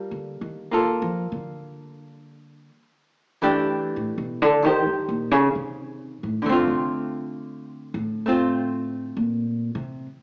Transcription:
0, 0, Header, 1, 3, 480
1, 0, Start_track
1, 0, Tempo, 904977
1, 1498, Time_signature, 4, 2, 24, 8
1, 5424, End_track
2, 0, Start_track
2, 0, Title_t, "Hollow-body jazz guitar"
2, 0, Program_c, 0, 26
2, 0, Note_on_c, 0, 55, 42
2, 0, Note_on_c, 0, 58, 37
2, 0, Note_on_c, 0, 65, 39
2, 0, Note_on_c, 0, 69, 41
2, 373, Note_off_c, 0, 58, 0
2, 379, Note_on_c, 0, 58, 29
2, 381, Note_off_c, 0, 65, 0
2, 386, Note_off_c, 0, 69, 0
2, 387, Note_on_c, 0, 65, 33
2, 393, Note_on_c, 0, 69, 37
2, 1497, Note_off_c, 0, 55, 0
2, 1499, Note_off_c, 0, 58, 0
2, 1503, Note_off_c, 0, 65, 0
2, 1506, Note_off_c, 0, 69, 0
2, 1813, Note_on_c, 0, 52, 39
2, 1818, Note_on_c, 0, 57, 38
2, 1822, Note_on_c, 0, 62, 42
2, 1822, Note_on_c, 0, 67, 45
2, 2451, Note_off_c, 0, 52, 0
2, 2453, Note_on_c, 0, 51, 32
2, 2460, Note_off_c, 0, 57, 0
2, 2462, Note_off_c, 0, 62, 0
2, 2462, Note_off_c, 0, 67, 0
2, 2474, Note_on_c, 0, 67, 36
2, 2480, Note_on_c, 0, 72, 37
2, 3403, Note_off_c, 0, 51, 0
2, 3405, Note_on_c, 0, 50, 36
2, 3425, Note_on_c, 0, 57, 41
2, 3427, Note_off_c, 0, 67, 0
2, 3430, Note_off_c, 0, 72, 0
2, 3444, Note_on_c, 0, 60, 42
2, 3460, Note_on_c, 0, 65, 45
2, 4374, Note_off_c, 0, 57, 0
2, 4381, Note_on_c, 0, 57, 31
2, 4385, Note_off_c, 0, 60, 0
2, 4391, Note_off_c, 0, 65, 0
2, 4391, Note_on_c, 0, 60, 32
2, 4397, Note_on_c, 0, 65, 29
2, 5332, Note_off_c, 0, 50, 0
2, 5340, Note_off_c, 0, 57, 0
2, 5345, Note_off_c, 0, 60, 0
2, 5348, Note_off_c, 0, 65, 0
2, 5424, End_track
3, 0, Start_track
3, 0, Title_t, "Upright bass"
3, 0, Program_c, 1, 32
3, 59, Note_on_c, 1, 50, 66
3, 213, Note_off_c, 1, 50, 0
3, 219, Note_on_c, 1, 51, 67
3, 517, Note_off_c, 1, 51, 0
3, 540, Note_on_c, 1, 53, 80
3, 694, Note_off_c, 1, 53, 0
3, 699, Note_on_c, 1, 50, 68
3, 1423, Note_off_c, 1, 50, 0
3, 2102, Note_on_c, 1, 45, 70
3, 2212, Note_off_c, 1, 45, 0
3, 2215, Note_on_c, 1, 47, 79
3, 2344, Note_off_c, 1, 47, 0
3, 2344, Note_on_c, 1, 50, 73
3, 2463, Note_off_c, 1, 50, 0
3, 2463, Note_on_c, 1, 51, 80
3, 2578, Note_off_c, 1, 51, 0
3, 2581, Note_on_c, 1, 43, 51
3, 2694, Note_off_c, 1, 43, 0
3, 2697, Note_on_c, 1, 46, 73
3, 2818, Note_off_c, 1, 46, 0
3, 2818, Note_on_c, 1, 49, 83
3, 2917, Note_off_c, 1, 49, 0
3, 2945, Note_on_c, 1, 48, 66
3, 3302, Note_off_c, 1, 48, 0
3, 3305, Note_on_c, 1, 45, 69
3, 3400, Note_off_c, 1, 45, 0
3, 3417, Note_on_c, 1, 43, 70
3, 3535, Note_off_c, 1, 43, 0
3, 3539, Note_on_c, 1, 36, 66
3, 3646, Note_off_c, 1, 36, 0
3, 4212, Note_on_c, 1, 45, 79
3, 4836, Note_off_c, 1, 45, 0
3, 4861, Note_on_c, 1, 46, 71
3, 5168, Note_off_c, 1, 46, 0
3, 5171, Note_on_c, 1, 48, 83
3, 5332, Note_off_c, 1, 48, 0
3, 5424, End_track
0, 0, End_of_file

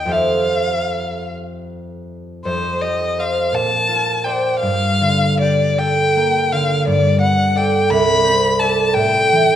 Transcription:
0, 0, Header, 1, 3, 480
1, 0, Start_track
1, 0, Key_signature, -1, "major"
1, 0, Tempo, 782269
1, 68, Time_signature, 6, 3, 24, 8
1, 1508, Tempo, 720288
1, 2948, Tempo, 774194
1, 3908, Tempo, 694444
1, 5828, Tempo, 748130
1, 6221, End_track
2, 0, Start_track
2, 0, Title_t, "Violin"
2, 0, Program_c, 0, 40
2, 0, Note_on_c, 0, 79, 52
2, 70, Note_on_c, 0, 77, 59
2, 80, Note_off_c, 0, 79, 0
2, 794, Note_off_c, 0, 77, 0
2, 1501, Note_on_c, 0, 72, 63
2, 1745, Note_on_c, 0, 75, 62
2, 1755, Note_off_c, 0, 72, 0
2, 2001, Note_on_c, 0, 77, 59
2, 2011, Note_off_c, 0, 75, 0
2, 2232, Note_on_c, 0, 81, 75
2, 2242, Note_off_c, 0, 77, 0
2, 2699, Note_on_c, 0, 79, 59
2, 2709, Note_off_c, 0, 81, 0
2, 2928, Note_off_c, 0, 79, 0
2, 2932, Note_on_c, 0, 77, 74
2, 3420, Note_off_c, 0, 77, 0
2, 3436, Note_on_c, 0, 74, 65
2, 3671, Note_on_c, 0, 79, 75
2, 3681, Note_off_c, 0, 74, 0
2, 4154, Note_on_c, 0, 77, 67
2, 4165, Note_off_c, 0, 79, 0
2, 4399, Note_off_c, 0, 77, 0
2, 4402, Note_on_c, 0, 74, 72
2, 4626, Note_off_c, 0, 74, 0
2, 4630, Note_on_c, 0, 78, 74
2, 4877, Note_on_c, 0, 79, 67
2, 4887, Note_off_c, 0, 78, 0
2, 5110, Note_on_c, 0, 83, 86
2, 5120, Note_off_c, 0, 79, 0
2, 5586, Note_on_c, 0, 81, 68
2, 5597, Note_off_c, 0, 83, 0
2, 5824, Note_on_c, 0, 79, 87
2, 5834, Note_off_c, 0, 81, 0
2, 6221, Note_off_c, 0, 79, 0
2, 6221, End_track
3, 0, Start_track
3, 0, Title_t, "Harp"
3, 0, Program_c, 1, 46
3, 0, Note_on_c, 1, 39, 46
3, 0, Note_on_c, 1, 65, 32
3, 0, Note_on_c, 1, 73, 32
3, 0, Note_on_c, 1, 75, 30
3, 34, Note_on_c, 1, 41, 37
3, 40, Note_on_c, 1, 67, 27
3, 47, Note_on_c, 1, 69, 28
3, 52, Note_on_c, 1, 72, 28
3, 56, Note_on_c, 1, 76, 27
3, 82, Note_off_c, 1, 75, 0
3, 85, Note_off_c, 1, 73, 0
3, 90, Note_off_c, 1, 39, 0
3, 1335, Note_off_c, 1, 65, 0
3, 1497, Note_off_c, 1, 41, 0
3, 1505, Note_on_c, 1, 41, 46
3, 1521, Note_off_c, 1, 76, 0
3, 1749, Note_off_c, 1, 67, 0
3, 1757, Note_on_c, 1, 67, 34
3, 1985, Note_off_c, 1, 72, 0
3, 1993, Note_on_c, 1, 72, 35
3, 2218, Note_on_c, 1, 46, 46
3, 2236, Note_off_c, 1, 69, 0
3, 2246, Note_off_c, 1, 41, 0
3, 2461, Note_on_c, 1, 65, 34
3, 2697, Note_off_c, 1, 72, 0
3, 2703, Note_on_c, 1, 72, 33
3, 2709, Note_on_c, 1, 74, 36
3, 2953, Note_on_c, 1, 43, 45
3, 2962, Note_off_c, 1, 46, 0
3, 2968, Note_off_c, 1, 72, 0
3, 3189, Note_on_c, 1, 50, 32
3, 3434, Note_off_c, 1, 67, 0
3, 3442, Note_on_c, 1, 67, 39
3, 3675, Note_on_c, 1, 69, 43
3, 3905, Note_on_c, 1, 58, 36
3, 4147, Note_off_c, 1, 50, 0
3, 4156, Note_on_c, 1, 50, 35
3, 4385, Note_off_c, 1, 43, 0
3, 4393, Note_on_c, 1, 43, 50
3, 4417, Note_off_c, 1, 58, 0
3, 4417, Note_off_c, 1, 65, 0
3, 4418, Note_off_c, 1, 50, 0
3, 4631, Note_on_c, 1, 59, 38
3, 4859, Note_off_c, 1, 69, 0
3, 4864, Note_off_c, 1, 74, 0
3, 4868, Note_on_c, 1, 69, 40
3, 4872, Note_on_c, 1, 74, 39
3, 5107, Note_on_c, 1, 36, 50
3, 5126, Note_off_c, 1, 43, 0
3, 5127, Note_off_c, 1, 59, 0
3, 5343, Note_on_c, 1, 60, 41
3, 5585, Note_off_c, 1, 69, 0
3, 5585, Note_off_c, 1, 74, 0
3, 5591, Note_on_c, 1, 69, 39
3, 5595, Note_on_c, 1, 74, 43
3, 5833, Note_on_c, 1, 45, 55
3, 5846, Note_off_c, 1, 36, 0
3, 5850, Note_off_c, 1, 74, 0
3, 6066, Note_off_c, 1, 67, 0
3, 6069, Note_on_c, 1, 52, 41
3, 6221, Note_off_c, 1, 45, 0
3, 6221, Note_off_c, 1, 52, 0
3, 6221, Note_off_c, 1, 60, 0
3, 6221, Note_off_c, 1, 69, 0
3, 6221, End_track
0, 0, End_of_file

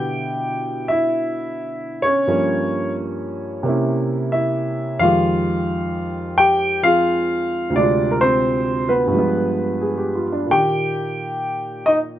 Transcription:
0, 0, Header, 1, 2, 480
1, 0, Start_track
1, 0, Tempo, 684151
1, 1601, Time_signature, 4, 2, 24, 8
1, 8553, End_track
2, 0, Start_track
2, 0, Title_t, "Upright piano"
2, 0, Program_c, 0, 0
2, 0, Note_on_c, 0, 47, 51
2, 0, Note_on_c, 0, 50, 43
2, 0, Note_on_c, 0, 59, 42
2, 0, Note_on_c, 0, 64, 50
2, 0, Note_on_c, 0, 67, 67
2, 0, Note_on_c, 0, 79, 97
2, 608, Note_off_c, 0, 79, 0
2, 617, Note_off_c, 0, 67, 0
2, 620, Note_on_c, 0, 76, 82
2, 635, Note_off_c, 0, 64, 0
2, 645, Note_on_c, 0, 64, 74
2, 1412, Note_off_c, 0, 64, 0
2, 1419, Note_on_c, 0, 73, 88
2, 1440, Note_on_c, 0, 61, 59
2, 1452, Note_off_c, 0, 76, 0
2, 1594, Note_off_c, 0, 47, 0
2, 1594, Note_off_c, 0, 61, 0
2, 1595, Note_on_c, 0, 43, 51
2, 1597, Note_on_c, 0, 53, 50
2, 1599, Note_off_c, 0, 59, 0
2, 1602, Note_on_c, 0, 58, 56
2, 1604, Note_on_c, 0, 61, 65
2, 1606, Note_off_c, 0, 50, 0
2, 2042, Note_off_c, 0, 73, 0
2, 2547, Note_on_c, 0, 48, 64
2, 2550, Note_off_c, 0, 58, 0
2, 2557, Note_off_c, 0, 43, 0
2, 2558, Note_off_c, 0, 53, 0
2, 2559, Note_off_c, 0, 61, 0
2, 2560, Note_on_c, 0, 58, 54
2, 2569, Note_on_c, 0, 61, 52
2, 2584, Note_on_c, 0, 64, 64
2, 3032, Note_on_c, 0, 76, 79
2, 3037, Note_off_c, 0, 64, 0
2, 3047, Note_on_c, 0, 64, 61
2, 3487, Note_off_c, 0, 76, 0
2, 3495, Note_off_c, 0, 64, 0
2, 3503, Note_on_c, 0, 41, 54
2, 3504, Note_on_c, 0, 77, 96
2, 3512, Note_on_c, 0, 51, 51
2, 3513, Note_off_c, 0, 48, 0
2, 3519, Note_off_c, 0, 58, 0
2, 3521, Note_on_c, 0, 65, 77
2, 3524, Note_off_c, 0, 61, 0
2, 3527, Note_on_c, 0, 56, 47
2, 3535, Note_on_c, 0, 67, 56
2, 4443, Note_off_c, 0, 77, 0
2, 4451, Note_off_c, 0, 65, 0
2, 4474, Note_on_c, 0, 79, 108
2, 4478, Note_off_c, 0, 67, 0
2, 4488, Note_on_c, 0, 67, 74
2, 4771, Note_off_c, 0, 79, 0
2, 4779, Note_off_c, 0, 67, 0
2, 4790, Note_on_c, 0, 53, 43
2, 4795, Note_on_c, 0, 77, 112
2, 4801, Note_on_c, 0, 60, 35
2, 4810, Note_on_c, 0, 65, 77
2, 4811, Note_on_c, 0, 68, 46
2, 5402, Note_on_c, 0, 38, 58
2, 5417, Note_off_c, 0, 65, 0
2, 5430, Note_off_c, 0, 41, 0
2, 5430, Note_on_c, 0, 48, 50
2, 5435, Note_off_c, 0, 51, 0
2, 5435, Note_off_c, 0, 53, 0
2, 5441, Note_off_c, 0, 60, 0
2, 5442, Note_off_c, 0, 56, 0
2, 5443, Note_on_c, 0, 74, 84
2, 5445, Note_off_c, 0, 68, 0
2, 5453, Note_on_c, 0, 62, 70
2, 5456, Note_on_c, 0, 56, 45
2, 5457, Note_off_c, 0, 77, 0
2, 5482, Note_on_c, 0, 65, 62
2, 5682, Note_off_c, 0, 62, 0
2, 5691, Note_on_c, 0, 70, 70
2, 5701, Note_off_c, 0, 74, 0
2, 5756, Note_off_c, 0, 70, 0
2, 5760, Note_on_c, 0, 72, 97
2, 5771, Note_on_c, 0, 60, 74
2, 6216, Note_off_c, 0, 60, 0
2, 6235, Note_on_c, 0, 71, 73
2, 6244, Note_on_c, 0, 59, 56
2, 6253, Note_off_c, 0, 72, 0
2, 6365, Note_on_c, 0, 43, 60
2, 6381, Note_off_c, 0, 38, 0
2, 6389, Note_on_c, 0, 53, 56
2, 6395, Note_off_c, 0, 48, 0
2, 6407, Note_off_c, 0, 56, 0
2, 6418, Note_on_c, 0, 56, 49
2, 6421, Note_off_c, 0, 65, 0
2, 6434, Note_off_c, 0, 59, 0
2, 6444, Note_on_c, 0, 59, 65
2, 6885, Note_on_c, 0, 68, 51
2, 7000, Note_on_c, 0, 67, 47
2, 7105, Note_off_c, 0, 68, 0
2, 7122, Note_on_c, 0, 65, 50
2, 7170, Note_off_c, 0, 71, 0
2, 7204, Note_off_c, 0, 67, 0
2, 7244, Note_on_c, 0, 62, 51
2, 7271, Note_off_c, 0, 65, 0
2, 7341, Note_on_c, 0, 46, 44
2, 7344, Note_off_c, 0, 43, 0
2, 7356, Note_off_c, 0, 53, 0
2, 7357, Note_on_c, 0, 58, 38
2, 7371, Note_off_c, 0, 56, 0
2, 7376, Note_on_c, 0, 79, 93
2, 7378, Note_on_c, 0, 67, 69
2, 7380, Note_on_c, 0, 51, 43
2, 7384, Note_off_c, 0, 59, 0
2, 7410, Note_off_c, 0, 62, 0
2, 8305, Note_off_c, 0, 67, 0
2, 8320, Note_on_c, 0, 75, 87
2, 8336, Note_on_c, 0, 63, 69
2, 8361, Note_off_c, 0, 79, 0
2, 8393, Note_off_c, 0, 75, 0
2, 8407, Note_off_c, 0, 63, 0
2, 8553, Note_off_c, 0, 46, 0
2, 8553, Note_off_c, 0, 51, 0
2, 8553, Note_off_c, 0, 58, 0
2, 8553, End_track
0, 0, End_of_file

